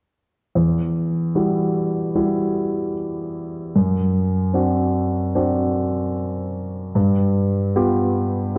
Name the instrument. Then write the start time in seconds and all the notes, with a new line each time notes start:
grand piano
0.55 E2
1.35 G3 E4 F#4
2.15 G3 E4 F#4
3.76 F#2
4.53 C4 D4 F#4
5.35 C4 D4 F#4
6.95 G2
7.76 B3 F4 G4